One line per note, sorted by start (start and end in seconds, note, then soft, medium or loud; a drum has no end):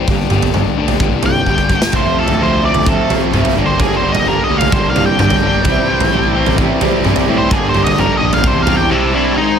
0.08 0.30 G1 loud
0.08 0.29 G2 medium
0.08 0.78 G2 medium
0.08 0.30 D3 medium
0.08 0.78 D3 medium
0.08 0.32 G3 medium
0.08 0.53 G3 medium
0.08 0.54 A#3 loud
0.08 0.54 D4 loud
0.08 0.56 G4 loud
0.08 kick loud
0.08 floor tom medium
0.30 0.53 G1 medium
0.30 0.52 G2 medium
0.30 0.52 D3 medium
0.30 0.54 G3 medium
0.30 mid tom medium
0.42 floor tom medium
0.53 0.65 G1 loud
0.53 0.76 G2 medium
0.53 0.77 D3 medium
0.53 1.01 G3 medium
0.53 0.78 G3 medium
0.53 1.00 A#3 medium
0.53 1.00 D4 medium
0.53 1.02 G4 medium
0.53 mid tom medium
0.77 1.00 D2 medium
0.77 0.99 G2 medium
0.77 0.99 D3 medium
0.77 1.01 G3 medium
0.88 floor tom medium
1.00 1.12 G1 loud
1.00 1.22 G2 medium
1.00 1.47 G2 medium
1.00 1.22 D3 loud
1.00 1.48 D3 medium
1.00 1.25 G3 medium
1.00 1.23 G3 medium
1.00 1.23 A#3 medium
1.00 1.23 D4 medium
1.00 1.23 G4 loud
1.00 kick loud
1.12 1.45 C2 medium
1.23 1.46 G2 medium
1.23 1.46 D3 medium
1.23 1.47 G3 loud
1.23 1.46 G3 medium
1.23 1.46 A#3 medium
1.23 1.47 D4 medium
1.23 1.48 G4 medium
1.23 1.93 G5 loud
1.23 floor tom medium
1.46 1.90 G1 loud
1.46 1.68 G2 medium
1.46 1.69 D3 medium
1.46 1.73 G3 medium
1.46 1.70 G3 loud
1.46 1.72 A#3 medium
1.46 1.71 D4 medium
1.46 1.71 G4 medium
1.46 kick medium
1.58 kick medium
1.69 1.92 G2 medium
1.69 1.92 D3 medium
1.69 1.94 G3 loud
1.69 1.94 G3 medium
1.69 1.94 A#3 medium
1.69 1.94 D4 medium
1.69 1.96 G4 medium
1.69 kick medium
1.82 snare medium
1.92 2.04 F1 medium
1.92 2.15 F2 medium
1.92 2.16 C3 medium
1.92 2.16 F3 medium
1.92 2.17 A3 loud
1.92 2.18 C4 loud
1.92 2.18 F4 loud
1.92 2.18 C5 medium
1.92 kick loud
1.92 floor tom medium
1.96 2.42 G4 loud
2.06 2.28 F2 loud
2.16 2.37 F2 medium
2.16 2.38 C3 medium
2.16 2.39 F3 medium
2.16 2.39 A3 medium
2.16 2.40 C4 medium
2.16 2.40 F4 medium
2.16 2.41 A4 medium
2.28 2.73 D2 medium
2.28 floor tom medium
2.39 2.60 F2 medium
2.39 2.62 C3 loud
2.39 2.62 F3 loud
2.39 2.62 A3 loud
2.39 2.63 C4 loud
2.39 2.63 F4 loud
2.43 2.88 G4 medium
2.43 2.65 C5 medium
2.62 2.84 F2 medium
2.62 2.85 C3 medium
2.62 2.85 F3 medium
2.62 2.86 A3 medium
2.62 2.86 C4 medium
2.62 2.87 F4 medium
2.62 2.87 D5 loud
2.74 2.97 D2 medium
2.74 floor tom medium
2.85 3.08 F2 loud
2.85 3.09 C3 loud
2.85 3.09 F3 loud
2.85 3.10 A3 loud
2.85 3.10 C4 loud
2.85 3.11 F4 loud
2.85 3.10 G4 loud
2.85 3.10 A4 loud
2.85 kick loud
3.09 3.31 F2 medium
3.09 3.32 C3 medium
3.09 3.32 F3 medium
3.09 3.33 A3 medium
3.09 3.33 C4 medium
3.09 3.34 F4 medium
3.09 3.34 G4 medium
3.09 floor tom medium
3.32 3.44 F1 loud
3.32 3.55 F2 loud
3.32 3.55 C3 loud
3.32 3.56 F3 loud
3.32 3.56 A3 loud
3.32 3.56 C4 medium
3.32 3.57 F4 loud
3.32 3.56 G4 medium
3.32 mid tom medium
3.45 floor tom medium
3.55 3.79 G1 loud
3.55 3.78 G2 medium
3.55 3.79 D3 medium
3.55 3.81 G3 loud
3.55 3.80 A#3 medium
3.55 3.81 D4 medium
3.55 3.80 G4 medium
3.66 3.81 C5 loud
3.80 4.02 G2 loud
3.80 4.03 D3 loud
3.80 4.04 G3 loud
3.80 4.04 A#3 loud
3.80 4.05 D4 loud
3.80 4.29 G4 loud
3.80 3.95 G#4 loud
3.80 kick loud
3.80 floor tom medium
3.97 4.12 C5 medium
4.02 4.25 G1 medium
4.02 4.25 G2 loud
4.02 4.26 D3 medium
4.02 4.28 G3 medium
4.02 4.28 A#3 medium
4.02 4.29 D4 loud
4.12 4.27 D#5 medium
4.12 floor tom medium
4.26 4.37 G1 loud
4.26 4.48 G2 loud
4.26 4.49 D3 loud
4.26 4.50 G3 loud
4.26 4.49 A#3 loud
4.26 4.51 D4 loud
4.26 4.75 G4 medium
4.26 4.42 A#4 loud
4.44 4.57 D#5 medium
4.49 4.72 D2 medium
4.49 4.71 G2 medium
4.49 4.72 D3 medium
4.49 4.73 G3 medium
4.49 4.73 A#3 medium
4.49 4.74 D4 medium
4.57 4.73 F5 medium
4.57 floor tom medium
4.72 4.86 G1 loud
4.72 4.94 G2 loud
4.72 4.95 D3 medium
4.72 4.97 G3 medium
4.72 4.96 A#3 loud
4.72 4.97 D4 loud
4.72 4.96 G4 loud
4.72 4.88 C5 loud
4.72 kick loud
4.85 5.17 C2 medium
4.90 5.04 F5 loud
4.96 5.17 G2 medium
4.96 5.18 D3 medium
4.96 5.19 G3 medium
4.96 5.19 A#3 medium
4.96 5.20 D4 loud
4.96 5.21 G4 medium
4.96 floor tom medium
5.06 5.19 G5 medium
5.18 5.63 G1 loud
5.18 5.41 G2 loud
5.18 5.42 D3 loud
5.18 5.43 G3 loud
5.18 5.43 A#3 loud
5.18 5.44 D4 loud
5.18 5.43 G4 medium
5.18 6.55 G5 loud
5.18 mid tom medium
5.30 floor tom medium
5.43 5.65 G2 medium
5.43 5.64 D3 medium
5.43 5.65 G3 loud
5.43 5.65 A#3 medium
5.43 5.66 D4 medium
5.43 5.68 G4 medium
5.64 5.76 C2 loud
5.64 5.86 C3 loud
5.64 6.12 E3 loud
5.64 5.88 G3 loud
5.64 5.88 C4 loud
5.64 6.14 D4 loud
5.64 5.88 E4 loud
5.64 6.15 G4 loud
5.64 kick loud
5.64 floor tom medium
5.77 5.99 C3 medium
5.87 6.10 C3 medium
5.87 6.12 G3 medium
5.87 6.12 C4 loud
5.87 6.12 E4 loud
6.00 6.44 A1 medium
6.00 floor tom medium
6.12 6.33 C3 loud
6.12 6.58 E3 medium
6.12 6.35 G3 loud
6.12 6.35 C4 loud
6.12 6.59 D4 medium
6.12 6.35 E4 loud
6.16 6.60 G4 medium
6.34 6.56 C3 medium
6.34 6.57 G3 medium
6.34 6.57 C4 loud
6.34 6.58 E4 medium
6.46 6.69 A1 medium
6.46 floor tom medium
6.57 6.80 C3 loud
6.57 7.04 E3 loud
6.57 6.81 G3 loud
6.57 6.81 C4 loud
6.57 6.81 D4 loud
6.57 6.82 E4 loud
6.57 6.80 G4 medium
6.57 kick loud
6.81 7.04 C3 medium
6.81 7.05 G3 loud
6.81 7.06 C4 loud
6.81 7.06 D4 medium
6.81 7.06 E4 medium
6.81 7.06 G4 medium
6.81 floor tom loud
7.04 7.16 C2 medium
7.04 7.27 C3 medium
7.04 7.50 E3 medium
7.04 7.28 G3 loud
7.04 7.28 C4 loud
7.04 7.29 D4 loud
7.04 7.29 E4 medium
7.04 7.28 G4 medium
7.04 mid tom medium
7.16 floor tom medium
7.28 7.39 A2 loud
7.28 7.50 C3 medium
7.28 7.51 G3 medium
7.28 7.51 C4 medium
7.28 7.51 D4 medium
7.28 7.51 E4 loud
7.28 7.51 G4 medium
7.38 7.52 C5 loud
7.51 7.73 G1 loud
7.51 7.74 G2 loud
7.51 7.74 D3 loud
7.51 7.75 G3 loud
7.51 7.76 A#3 loud
7.51 7.76 D4 loud
7.51 7.98 G4 loud
7.51 7.67 G#4 loud
7.51 kick loud
7.51 floor tom medium
7.69 7.83 C5 medium
7.74 7.96 G1 medium
7.74 7.96 G2 medium
7.74 7.97 D3 medium
7.74 7.98 G3 medium
7.74 7.99 A#3 loud
7.74 7.99 D4 loud
7.74 mid tom medium
7.84 7.98 D#5 loud
7.84 floor tom medium
7.98 8.09 G1 loud
7.98 8.19 G2 loud
7.98 8.20 D3 loud
7.98 8.21 G3 loud
7.98 8.21 A#3 loud
7.98 8.22 D4 loud
7.98 8.43 G4 medium
7.98 8.14 A#4 loud
7.98 mid tom medium
8.17 8.43 A#1 medium
8.17 8.43 G2 medium
8.17 8.43 D3 medium
8.17 8.30 D#5 medium
8.22 8.43 G3 medium
8.22 8.44 A#3 medium
8.22 8.44 D4 loud
8.33 8.46 F5 medium
8.33 floor tom medium
8.44 8.57 C2 loud
8.44 8.66 C3 loud
8.44 8.67 G3 loud
8.44 8.68 C4 loud
8.44 8.68 D4 loud
8.44 8.66 G4 medium
8.44 8.61 C5 loud
8.44 kick loud
8.57 8.89 E2 loud
8.62 8.76 F5 loud
8.67 8.89 C3 medium
8.67 8.89 G3 loud
8.67 8.90 C4 medium
8.67 8.90 D4 medium
8.67 8.91 G4 medium
8.67 floor tom medium
8.77 8.90 G5 loud
8.90 9.12 C3 loud
8.90 9.13 G3 loud
8.90 9.13 C4 loud
8.90 9.14 D4 loud
8.90 9.13 E4 medium
8.90 9.13 G4 medium
8.90 9.13 E5 loud
8.90 9.36 G5 medium
9.13 9.35 C3 medium
9.13 9.36 G3 medium
9.13 9.36 C4 loud
9.13 9.36 D4 loud
9.13 9.36 E4 medium
9.13 9.36 G4 medium
9.13 9.37 E5 medium
9.35 9.59 G#2 medium
9.35 9.59 D#3 medium
9.35 9.59 G#3 loud
9.35 9.59 D#4 medium
9.35 9.59 C5 medium
9.35 9.59 D#5 medium
9.35 9.59 G#5 medium
9.35 9.59 C6 medium